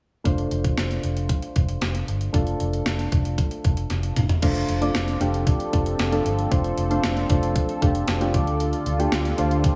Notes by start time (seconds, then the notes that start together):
0.24 F1 A3 D4 F4 C5, kick, closed hi-hat
0.38 closed hi-hat
0.51 F1, closed hi-hat
0.64 kick, closed hi-hat
0.77 F1, snare, closed hi-hat
0.91 closed hi-hat
1.03 F1, closed hi-hat
1.17 closed hi-hat
1.29 kick, closed hi-hat
1.42 closed hi-hat
1.56 F1, kick, closed hi-hat
1.69 closed hi-hat
1.81 F1, snare, closed hi-hat
1.95 closed hi-hat
2.08 G1, closed hi-hat
2.21 closed hi-hat
2.33 F1 A3 D4 F4 A4, kick, closed hi-hat
2.47 closed hi-hat
2.60 F1, closed hi-hat
2.73 closed hi-hat
2.86 F1, snare, closed hi-hat
2.99 closed hi-hat
3.12 F1, kick, closed hi-hat
3.25 closed hi-hat
3.38 kick, closed hi-hat
3.51 closed hi-hat
3.64 F1, kick, closed hi-hat
3.77 closed hi-hat
3.90 F1, snare, closed hi-hat
4.03 closed hi-hat
4.16 F1, closed hi-hat, mid tom
4.29 closed hi-hat, floor tom
4.42 F1 F3 A3 C4 D4 F4 A4 C5, kick, closed hi-hat, crash
4.55 closed hi-hat
4.69 F1, closed hi-hat
4.81 A3 D4 F4 D5, closed hi-hat
4.95 F1, snare, closed hi-hat
5.08 closed hi-hat
5.20 F1 A3 D4 F4 G4, closed hi-hat
5.34 closed hi-hat
5.47 kick, closed hi-hat
5.60 closed hi-hat
5.72 F1 A3 D4 F4 A4, kick, closed hi-hat
5.86 closed hi-hat
5.99 F1, snare, closed hi-hat
6.12 A3 D4 F4 A4, closed hi-hat
6.25 G1, closed hi-hat
6.39 closed hi-hat
6.51 F1 A3 D4 F4 C5, kick, closed hi-hat
6.64 closed hi-hat
6.78 F1, closed hi-hat
6.90 A3 D4 F4 C5, closed hi-hat
7.04 F1, snare, closed hi-hat
7.17 closed hi-hat
7.29 F1 A3 D4 F4 C5, kick, closed hi-hat
7.43 closed hi-hat
7.56 kick, closed hi-hat
7.69 closed hi-hat
7.82 F1 A3 D4 F4 G4, kick, closed hi-hat
7.95 closed hi-hat
8.08 F1, snare, closed hi-hat
8.20 A3 D4 F4 G4, closed hi-hat
8.33 D2 D3 A3 D4 F4 D5, kick, closed hi-hat
8.47 closed hi-hat
8.60 closed hi-hat
8.73 closed hi-hat
8.86 D2, closed hi-hat
8.98 A3 D4 F4 G4, closed hi-hat
9.12 D2, snare, closed hi-hat
9.25 closed hi-hat
9.38 D2 A3 D4 F4 C5, closed hi-hat
9.51 closed hi-hat
9.64 kick, closed hi-hat